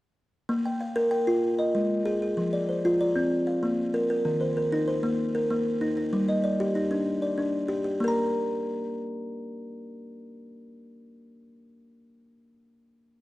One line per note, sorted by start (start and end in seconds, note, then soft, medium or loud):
0.49 0.81 A#3 medium
0.65 1.10 G5 medium
0.81 1.28 F5 medium
0.96 1.28 A#4 medium
1.11 1.59 G5 medium
1.27 1.44 F4 medium
1.59 2.06 D#5 medium
1.75 2.07 G#3 medium
2.06 2.21 G#4 medium
2.22 2.54 G#4 medium
2.37 2.69 F3 medium
2.53 2.99 D5 medium
2.69 3.16 C5 medium
2.85 3.17 F4 medium
3.01 3.48 D5 medium
3.16 3.32 C4 medium
3.47 3.94 F5 medium
3.63 3.94 A#3 medium
3.94 4.09 A#4 medium
4.10 4.41 A#4 medium
4.25 4.57 D#3 medium
4.41 4.87 C5 medium
4.57 5.04 A#4 medium
4.72 5.04 D#4 medium
4.88 5.35 C5 medium
5.03 5.35 A#3 medium
5.35 5.82 A#4 medium
5.50 5.82 A#3 medium
5.81 5.96 D#4 medium
5.97 6.28 D#4 medium
6.13 6.44 G3 medium
6.28 6.75 D#5 medium
6.44 6.91 D5 medium
6.60 6.91 G4 medium
6.75 7.22 D#4 medium
6.91 7.22 D4 medium
7.22 7.69 D5 medium
7.38 7.69 D4 medium
7.68 7.83 G4 medium
7.84 8.15 G4 medium
8.00 11.38 A#3 medium
8.00 11.42 A#4 medium
8.08 11.45 A#5 medium